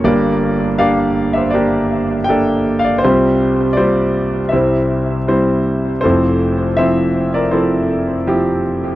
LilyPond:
<<
  \new Staff \with { instrumentName = "Grand piano" } { \time 4/4 \key f \major \tempo 4 = 80 << { <bes' d''>4 f''8. <c'' e''>16 <bes' d''>4 <d'' g''>8. <d'' f''>16 | <g' c''>4 <g' d''>4 <c'' e''>4. r8 | <a' c''>4 <c'' e''>8. <bes' d''>16 <a' c''>4. r8 | } \\ { <bes d' g'>4 <bes d' g' d''>4 <bes d' g'>4 <bes d' g' a'>4 | <g c' f' c''>4 <g c' f' c''>4 <g c' e'>4 <g c' e' c''>4 | <f c' e'>4 <f c' e'>4 <f c' e'>4 <f c' e' g'>4 | } >> }
  \new Staff \with { instrumentName = "Grand piano" } { \clef bass \time 4/4 \key f \major <g,, g,>1 | <c, c>2 <c, c>2 | <f,, f,>1 | }
>>